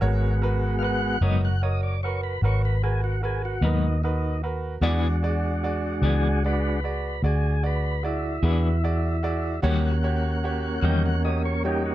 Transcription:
0.01 1.18 G#1 medium
0.01 1.18 G#3 medium
0.01 1.19 B3 soft
0.01 0.31 F#4 medium
0.01 1.19 F#4 medium
0.01 0.31 A#4 medium
0.01 0.32 C#5 medium
0.42 0.72 F#4 medium
0.42 0.72 A#4 medium
0.42 0.72 B4 medium
0.79 1.12 F#4 medium
0.79 1.12 A#4 soft
0.79 1.12 B4 medium
0.79 0.83 F5 medium
0.84 1.22 F#5 loud
1.21 2.38 F#1 medium
1.21 1.47 G#2 medium
1.21 1.46 F#3 medium
1.21 1.46 B3 medium
1.21 1.46 D#4 medium
1.21 1.52 F#4 medium
1.21 1.52 A#4 soft
1.21 1.52 C#5 medium
1.21 1.41 D#5 medium
1.45 1.62 F#5 medium
1.62 1.92 F#4 medium
1.62 1.92 A#4 soft
1.62 1.92 C#5 medium
1.62 1.81 D#5 medium
1.83 2.01 D5 medium
2.03 2.33 F#4 medium
2.03 2.33 A#4 medium
2.03 2.34 B4 medium
2.03 2.21 C#5 medium
2.24 2.41 B4 medium
2.42 3.59 G#1 medium
2.42 2.72 F#4 medium
2.42 2.73 A#4 medium
2.42 2.73 B4 medium
2.42 2.62 C#5 medium
2.65 2.82 B4 medium
2.83 3.13 F#4 medium
2.83 3.01 G#4 medium
2.83 3.13 A#4 soft
2.83 3.13 B4 medium
3.04 3.22 F#4 medium
3.22 3.52 F#4 medium
3.22 3.42 G#4 medium
3.22 3.53 A#4 soft
3.22 3.53 B4 medium
3.45 3.62 F#4 medium
3.61 4.78 D#2 medium
3.61 3.87 G#2 medium
3.61 3.87 F#3 medium
3.61 3.86 B3 medium
3.61 3.86 D#4 medium
3.61 4.02 D#4 loud
3.61 3.93 F#4 soft
3.61 3.93 A#4 soft
3.61 3.93 B4 medium
4.04 4.42 D#4 medium
4.04 4.33 F#4 medium
4.04 4.33 A#4 soft
4.04 4.34 B4 medium
4.43 4.73 F#4 medium
4.43 4.73 A#4 soft
4.43 4.73 B4 medium
4.81 5.99 E2 medium
4.81 5.06 E3 medium
4.81 6.43 G#3 medium
4.81 5.06 B3 medium
4.81 6.44 D4 soft
4.81 5.07 D4 medium
4.81 5.12 F#4 medium
4.81 6.44 F#4 medium
4.81 5.13 G#4 medium
4.81 5.07 G#4 medium
4.81 5.13 D5 medium
5.22 5.53 F#4 medium
5.22 5.53 G#4 medium
5.22 5.53 D5 medium
5.63 5.93 F#4 medium
5.63 5.93 G#4 medium
5.63 5.94 D5 medium
6.02 7.19 C#2 medium
6.02 6.28 E3 medium
6.02 6.27 B3 medium
6.02 6.27 D4 medium
6.02 6.32 F#4 medium
6.02 6.27 G#4 medium
6.02 6.33 G#4 medium
6.02 6.43 G#4 medium
6.02 6.33 D5 medium
6.45 6.80 G#3 soft
6.45 6.80 D4 soft
6.45 6.74 F#4 medium
6.45 6.80 F#4 soft
6.45 6.74 G#4 soft
6.45 7.22 B4 medium
6.45 6.74 D5 medium
6.84 7.13 F#4 medium
6.84 7.13 G#4 soft
6.84 7.14 D5 medium
7.22 8.39 D2 medium
7.22 7.53 F#4 medium
7.22 7.53 G#4 soft
7.22 7.63 G#4 medium
7.22 7.54 D5 medium
7.63 7.93 F#4 medium
7.63 7.93 G#4 soft
7.63 8.04 B4 medium
7.63 7.93 D5 medium
8.03 9.61 E4 loud
8.03 8.33 F#4 medium
8.03 8.33 G#4 medium
8.03 8.34 D5 medium
8.43 9.59 E2 medium
8.43 8.68 E3 medium
8.43 8.68 B3 medium
8.43 8.67 D4 medium
8.43 8.73 F#4 medium
8.43 8.67 G#4 medium
8.43 8.74 G#4 soft
8.43 8.74 B4 medium
8.83 9.13 F#4 medium
8.83 9.14 G#4 soft
8.83 9.14 D5 medium
9.23 9.53 F#4 medium
9.23 9.53 G#4 medium
9.23 9.54 D5 medium
9.62 10.80 D#2 medium
9.62 9.87 D#3 medium
9.62 9.87 G3 medium
9.62 11.95 A#3 medium
9.62 11.64 C#4 medium
9.62 9.88 C#4 medium
9.62 9.93 F#4 medium
9.62 9.88 F#4 medium
9.62 9.93 G4 medium
9.62 9.93 C#5 medium
9.62 10.80 F#5 medium
10.03 10.33 F#4 medium
10.03 10.34 G4 medium
10.03 10.34 C#5 medium
10.43 10.73 F#4 medium
10.43 10.74 G4 medium
10.43 10.74 C#5 medium
10.81 11.95 E2 medium
10.81 11.08 D#3 medium
10.81 11.07 G3 medium
10.81 11.07 C#4 medium
10.81 11.07 F#4 medium
10.81 11.13 F#4 medium
10.81 11.13 G4 medium
10.81 11.14 D#5 medium
10.81 10.86 F#5 medium
10.81 11.03 G5 loud
11.06 11.23 F#5 medium
11.23 11.53 F#4 medium
11.23 11.54 G4 medium
11.23 11.54 C#5 medium
11.23 11.43 D#5 medium
11.45 11.63 C#5 medium
11.64 11.95 G3 soft
11.64 11.95 C#4 soft
11.64 11.95 D#4 soft
11.64 11.93 F#4 medium
11.64 11.94 G4 medium
11.64 11.83 G4 medium
11.64 11.94 C#5 medium
11.86 11.95 F#4 medium

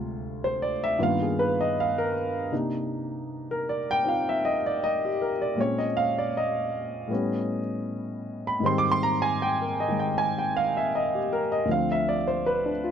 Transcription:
0.00 0.97 D2 medium
0.00 0.98 C3 soft
0.00 1.00 G#3 soft
0.00 0.98 F4 medium
0.44 0.71 C5 medium
0.62 0.80 D5 medium
0.84 0.97 E5 medium
0.98 2.51 G2 medium
0.98 2.52 D#3 medium
0.98 2.51 A#3 medium
0.98 2.52 B3 medium
0.98 2.52 F4 medium
1.03 1.26 F5 medium
1.22 1.48 G#4 medium
1.39 1.57 B4 medium
1.61 1.74 D#5 medium
1.80 2.03 F5 medium
1.98 2.15 A#4 medium
2.52 5.57 C3 soft
2.52 5.57 A#3 soft
2.52 5.58 D4 soft
2.52 4.04 D#4 medium
3.51 3.77 A#4 medium
3.69 3.86 D5 medium
3.91 4.03 G5 loud
4.04 5.57 C4 soft
4.04 5.58 D#4 soft
4.04 5.58 F4 soft
4.09 4.31 F5 medium
4.29 4.54 E5 medium
4.45 4.62 D#5 medium
4.66 4.79 D5 medium
4.84 5.07 D#5 medium
5.05 5.31 G4 medium
5.22 5.39 A#4 medium
5.42 5.55 D5 medium
5.55 7.09 A#2 medium
5.55 7.10 G#3 soft
5.55 7.10 C4 soft
5.60 7.11 C#4 medium
5.60 5.84 C#5 medium
5.78 6.05 D#5 medium
5.97 6.14 F5 loud
6.18 6.32 D5 medium
6.37 7.59 D#5 medium
7.07 8.61 A2 soft
7.07 8.62 G3 soft
7.07 8.63 B3 soft
7.13 8.64 C#4 medium
8.47 8.60 B5 medium
8.60 11.65 G#2 medium
8.60 9.87 D#3 medium
8.60 11.67 G3 medium
8.65 11.68 C4 medium
8.65 8.81 C6 medium
8.78 8.87 D6 loud
8.92 9.15 C6 loud
9.03 9.20 A#5 loud
9.22 9.36 G#5 loud
9.42 9.65 G5 medium
9.62 9.88 A#4 medium
9.80 9.97 D#5 medium
9.88 11.66 D#3 soft
9.88 11.67 G#3 medium
9.99 10.13 G5 medium
10.18 10.41 G#5 medium
10.38 10.64 G5 medium
10.57 10.73 F5 loud
10.77 10.90 E5 medium
10.95 11.18 D#5 medium
11.15 11.40 G4 medium
11.33 11.49 A#4 medium
11.52 11.65 D#5 medium
11.65 12.91 D2 soft
11.65 12.91 D3 soft
11.65 12.91 F3 soft
11.70 12.91 C4 medium
11.70 11.94 F5 medium
11.92 12.17 E5 medium
12.09 12.25 D5 medium
12.28 12.41 C5 medium
12.46 12.69 B4 medium
12.66 12.91 D4 medium
12.84 12.91 F4 medium

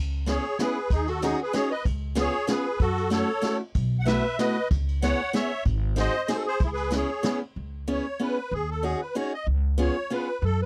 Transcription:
0.00 0.36 C#2 medium
0.26 0.44 B3 medium
0.26 0.44 C#4 medium
0.26 0.44 E4 soft
0.26 0.44 G#4 medium
0.26 0.58 G#4 medium
0.26 0.61 C#5 medium
0.26 snare medium
0.26 ride soft
0.59 0.76 B3 medium
0.59 0.76 C#4 soft
0.59 0.76 E4 soft
0.59 0.89 G#4 medium
0.59 0.77 G#4 medium
0.59 0.92 B4 medium
0.59 snare medium
0.59 ride soft
0.90 1.32 D#2 medium
0.90 1.07 D#4 medium
0.90 1.09 G#4 medium
0.90 kick medium
0.90 ride medium
1.07 1.21 F#4 medium
1.07 1.24 A4 medium
1.07 ride soft
1.22 1.39 C#4 medium
1.22 1.38 D#4 medium
1.22 1.39 D#4 soft
1.22 1.40 F#4 medium
1.22 1.40 G#4 medium
1.22 snare medium
1.22 ride medium
1.41 1.53 G#4 medium
1.41 1.55 B4 medium
1.53 1.70 C#4 medium
1.53 1.70 D#4 soft
1.53 1.71 F#4 medium
1.53 1.70 G#4 medium
1.53 1.71 G#4 medium
1.53 1.72 C#5 medium
1.53 snare medium
1.53 ride soft
1.71 1.85 B4 medium
1.71 1.85 D#5 medium
1.85 2.27 C#2 medium
1.85 kick medium
1.85 ride soft
2.15 2.33 B3 medium
2.15 2.33 C#4 medium
2.15 2.33 F4 soft
2.15 2.34 G#4 medium
2.15 2.48 G#4 medium
2.15 snare medium
2.15 ride soft
2.22 2.52 C#5 loud
2.47 2.65 B3 medium
2.47 2.65 C#4 soft
2.47 2.65 F4 soft
2.47 2.65 G#4 medium
2.47 2.78 G#4 medium
2.47 2.82 B4 medium
2.47 snare medium
2.47 ride soft
2.79 3.21 F#2 medium
2.79 3.10 F#4 medium
2.79 3.11 A4 medium
2.79 kick medium
2.79 ride soft
2.97 ride soft
3.10 3.28 A3 medium
3.10 3.28 C#4 medium
3.10 3.28 E4 medium
3.10 3.28 F#4 medium
3.10 3.57 A4 medium
3.10 3.58 C#5 medium
3.10 snare medium
3.10 ride soft
3.41 3.59 A3 medium
3.41 3.60 C#4 soft
3.41 3.60 E4 medium
3.41 3.60 F#4 medium
3.41 snare medium
3.41 ride soft
3.75 4.17 B1 medium
3.75 kick medium
3.75 ride soft
4.00 4.07 F#5 medium
4.05 4.24 A3 medium
4.05 4.23 B3 medium
4.05 4.24 E4 soft
4.05 4.24 F#4 medium
4.05 4.37 B4 medium
4.05 4.39 E5 medium
4.05 snare medium
4.05 ride soft
4.38 4.56 A3 medium
4.38 4.56 B3 soft
4.38 4.56 E4 medium
4.38 4.56 F#4 medium
4.38 4.69 B4 medium
4.38 4.68 D#5 medium
4.38 snare medium
4.38 ride soft
4.71 5.12 C#2 medium
4.71 kick medium
4.71 ride soft
4.88 ride soft
5.02 5.19 B3 medium
5.02 5.20 C#4 medium
5.02 5.20 E4 soft
5.02 5.20 G#4 medium
5.02 5.32 C#5 medium
5.02 5.35 F#5 medium
5.02 snare medium
5.02 ride soft
5.33 5.51 B3 medium
5.33 5.51 C#4 soft
5.33 5.51 E4 soft
5.33 5.51 G#4 medium
5.33 5.64 C#5 medium
5.33 5.64 E5 medium
5.33 snare medium
5.33 ride soft
5.65 6.06 G#1 medium
5.65 kick medium
5.65 ride soft
5.96 6.13 C4 medium
5.96 6.14 D#4 medium
5.96 6.14 F#4 medium
5.96 6.14 G#4 medium
5.96 6.28 C5 medium
5.96 6.31 D#5 loud
5.96 snare medium
5.96 ride soft
6.28 6.45 C4 medium
6.28 6.45 D#4 medium
6.28 6.46 F#4 soft
6.28 6.35 G#4 medium
6.28 6.45 G#4 medium
6.28 6.37 C5 medium
6.28 snare medium
6.28 ride soft
6.36 6.43 A4 medium
6.46 6.61 G#4 medium
6.46 6.63 C5 loud
6.60 7.02 C#2 medium
6.60 6.70 E4 medium
6.60 kick medium
6.60 ride soft
6.66 6.70 G#4 medium
6.72 6.92 G#4 medium
6.72 6.95 B4 medium
6.77 ride medium
6.91 7.08 B3 medium
6.91 7.08 C#4 soft
6.91 7.09 E4 medium
6.91 7.09 G#4 medium
6.91 snare medium
6.91 ride medium
6.95 7.39 G#4 medium
6.95 7.40 C#5 medium
7.23 7.40 B3 medium
7.23 7.41 C#4 soft
7.23 7.41 E4 soft
7.23 7.41 G#4 medium
7.23 snare medium
7.23 ride soft
7.56 7.98 C#2 medium
7.88 8.05 B3 medium
7.88 8.05 C#4 medium
7.88 8.05 E4 soft
7.88 8.05 G#4 medium
7.92 8.23 C#5 medium
8.19 8.37 B3 medium
8.19 8.37 C#4 soft
8.19 8.37 E4 soft
8.19 8.37 G#4 medium
8.19 8.54 B4 medium
8.51 8.93 D#2 medium
8.51 8.70 G#4 medium
8.71 8.85 A4 medium
8.83 9.00 C#4 medium
8.83 9.00 D#4 soft
8.83 9.00 F#4 medium
8.83 9.01 G#4 medium
8.83 9.00 G#4 medium
9.01 9.16 B4 medium
9.15 9.32 C#4 medium
9.15 9.32 D#4 soft
9.15 9.32 F#4 soft
9.15 9.32 G#4 medium
9.15 9.33 C#5 medium
9.34 9.47 D#5 medium
9.47 9.88 C#2 medium
9.78 9.95 B3 medium
9.78 9.95 C#4 medium
9.78 9.95 F4 medium
9.78 9.95 G#4 medium
9.78 10.12 C#5 medium
10.10 10.27 B3 medium
10.10 10.27 C#4 soft
10.10 10.27 F4 medium
10.10 10.27 G#4 medium
10.10 10.44 B4 medium
10.42 10.65 F#2 medium
10.42 10.61 A4 medium
10.62 10.65 B4 medium

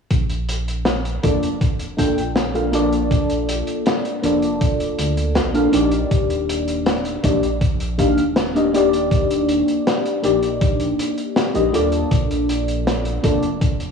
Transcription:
0.11 1.18 A#1 loud
0.11 kick loud
0.11 closed hi-hat medium
0.30 closed hi-hat medium
0.49 closed hi-hat medium
0.68 closed hi-hat medium
0.85 snare loud
0.85 closed hi-hat medium
1.05 closed hi-hat medium
1.23 2.19 F1 loud
1.23 1.48 A#3 medium
1.23 1.48 D4 medium
1.23 1.48 F4 medium
1.23 1.49 A4 medium
1.23 1.49 D5 medium
1.23 kick loud
1.23 closed hi-hat loud
1.43 closed hi-hat medium
1.61 kick loud
1.61 closed hi-hat medium
1.79 closed hi-hat medium
1.97 2.23 A#3 medium
1.97 2.23 D4 medium
1.97 2.23 F4 medium
1.97 2.23 A4 medium
1.97 2.23 G5 medium
1.97 kick medium
1.97 closed hi-hat loud
2.17 3.62 A#1 loud
2.17 closed hi-hat soft
2.36 snare loud
2.36 closed hi-hat medium
2.54 2.69 A#3 medium
2.54 2.69 D4 medium
2.54 2.69 F4 medium
2.54 2.69 A4 medium
2.54 2.70 F5 medium
2.54 closed hi-hat medium
2.72 4.18 A#3 medium
2.72 4.19 D4 medium
2.72 4.19 F4 medium
2.72 4.19 A4 medium
2.72 4.20 D5 loud
2.72 closed hi-hat medium
2.92 closed hi-hat medium
3.11 kick loud
3.11 closed hi-hat medium
3.30 closed hi-hat medium
3.49 closed hi-hat loud
3.67 closed hi-hat medium
3.86 snare loud
3.86 closed hi-hat medium
4.05 closed hi-hat medium
4.22 4.93 F1 loud
4.22 5.50 A#3 medium
4.22 5.50 D4 medium
4.22 5.50 F4 medium
4.22 5.51 A4 medium
4.22 5.51 D5 medium
4.22 closed hi-hat loud
4.42 closed hi-hat medium
4.61 kick loud
4.61 closed hi-hat medium
4.80 closed hi-hat medium
4.99 5.38 D2 medium
4.99 closed hi-hat loud
5.17 closed hi-hat medium
5.35 5.67 A#1 medium
5.35 snare loud
5.35 closed hi-hat medium
5.54 5.70 A#3 medium
5.54 5.70 D4 medium
5.54 5.70 F4 medium
5.54 5.71 A4 medium
5.54 5.71 F5 medium
5.54 closed hi-hat medium
5.72 6.04 A#1 loud
5.72 7.18 A#3 medium
5.72 7.19 D4 medium
5.72 7.19 D#4 medium
5.72 7.19 G4 medium
5.72 7.20 D5 medium
5.72 closed hi-hat loud
5.92 closed hi-hat medium
6.11 7.18 D#1 loud
6.11 kick loud
6.11 closed hi-hat medium
6.30 closed hi-hat medium
6.49 closed hi-hat medium
6.68 closed hi-hat medium
6.86 snare loud
6.86 closed hi-hat medium
7.05 closed hi-hat medium
7.23 8.19 A#1 loud
7.23 7.48 A#3 medium
7.23 7.49 D4 medium
7.23 7.49 D#4 medium
7.23 7.49 G4 medium
7.23 7.49 D5 medium
7.23 kick loud
7.23 closed hi-hat loud
7.43 closed hi-hat medium
7.61 kick loud
7.61 closed hi-hat medium
7.80 closed hi-hat medium
7.98 8.23 A#3 medium
7.98 8.23 D4 medium
7.98 8.23 D#4 medium
7.98 8.23 G4 medium
7.98 8.24 F5 medium
7.98 kick medium
7.98 closed hi-hat loud
8.18 9.62 D#1 loud
8.18 closed hi-hat medium
8.36 snare loud
8.36 closed hi-hat medium
8.55 8.69 A#3 medium
8.55 8.69 D4 medium
8.55 8.70 D#4 medium
8.55 8.70 G4 medium
8.55 8.70 D#5 medium
8.55 closed hi-hat medium
8.73 10.19 A#3 medium
8.73 10.19 D4 medium
8.73 10.20 D#4 medium
8.73 10.20 G4 medium
8.73 10.20 D5 loud
8.73 closed hi-hat loud
8.93 closed hi-hat medium
9.11 kick loud
9.11 closed hi-hat medium
9.30 closed hi-hat medium
9.49 closed hi-hat medium
9.68 closed hi-hat soft
9.87 snare loud
9.87 closed hi-hat medium
10.06 closed hi-hat medium
10.22 10.93 A#1 loud
10.22 11.50 A#3 medium
10.22 11.50 D4 medium
10.22 11.50 D#4 medium
10.22 11.51 G4 medium
10.22 11.51 D5 medium
10.22 closed hi-hat medium
10.43 closed hi-hat medium
10.61 kick loud
10.61 closed hi-hat medium
10.80 closed hi-hat medium
10.99 closed hi-hat medium
11.18 closed hi-hat soft
11.36 snare loud
11.36 closed hi-hat medium
11.54 11.70 A#1 medium
11.54 11.70 A#3 medium
11.54 11.70 D4 medium
11.54 11.71 D#4 medium
11.54 11.71 G4 medium
11.54 11.71 D#5 medium
11.54 closed hi-hat medium
11.72 12.04 D#1 medium
11.72 13.19 A#3 medium
11.72 13.19 D4 medium
11.72 13.19 F4 medium
11.72 13.20 A4 medium
11.72 13.20 D5 medium
11.72 closed hi-hat medium
11.92 closed hi-hat medium
12.11 13.18 A#1 loud
12.11 kick loud
12.11 closed hi-hat medium
12.31 closed hi-hat medium
12.49 closed hi-hat medium
12.68 closed hi-hat medium
12.87 snare loud
12.87 closed hi-hat medium
13.05 closed hi-hat medium
13.23 13.91 F1 loud
13.23 13.48 A#3 medium
13.23 13.48 D4 medium
13.23 13.48 F4 medium
13.23 13.49 A4 medium
13.23 13.49 D5 medium
13.23 kick loud
13.23 closed hi-hat loud
13.43 closed hi-hat soft
13.61 kick loud
13.61 closed hi-hat medium
13.80 closed hi-hat medium

